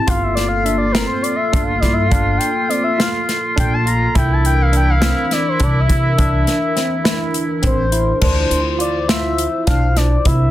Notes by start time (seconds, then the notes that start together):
0.07 G1 A#3 F4 A4 F5, kick, closed hi-hat
0.23 E5
0.35 D5, snare, closed hi-hat
0.48 F5
0.64 D4 E5, closed hi-hat
0.78 D5
0.92 C4 A#4, snare, closed hi-hat
1.07 C5
1.22 D5, closed hi-hat
1.36 E5
1.52 G1 D4, kick, closed hi-hat
1.63 F5
1.80 G2 E4 D5, kick, snare, closed hi-hat
1.93 E5
2.07 F5
2.11 G1 D4, kick, closed hi-hat
2.38 G5, closed hi-hat
2.69 C4 D5, closed hi-hat
2.84 E5
2.98 F4 F5, snare, closed hi-hat
3.29 snare, closed hi-hat
3.56 A#1 D4 G5, kick, closed hi-hat
3.73 A5
3.86 F4 A#5, closed hi-hat
4.14 C2 E3 D4 E4 A#4 G5, kick, closed hi-hat
4.33 A5
4.45 G5, closed hi-hat
4.62 F5
4.72 D4, closed hi-hat
4.77 G5
4.90 F5
5.02 C4, snare, closed hi-hat
5.31 D5, snare, closed hi-hat
5.48 C5
5.60 C2 D4 D5, kick, closed hi-hat
5.80 E5
5.88 C3 E4, kick, closed hi-hat
6.18 C2 D4, kick, closed hi-hat
6.47 snare, closed hi-hat
6.76 C4, snare, closed hi-hat
7.04 E4, snare, closed hi-hat
7.34 closed hi-hat
7.62 A1 C4 C5, kick, closed hi-hat
7.92 E4, closed hi-hat
8.21 D2 D4 E4 F4 C5, kick, crash
8.50 D2, closed hi-hat
8.79 F4 D5, closed hi-hat
9.08 F4 E5, snare, closed hi-hat
9.38 closed hi-hat
9.66 B1 D4 F5, kick, snare, closed hi-hat
9.96 D4 D5, snare, closed hi-hat
10.25 C2 D4 E4 A#4 E5, kick, closed hi-hat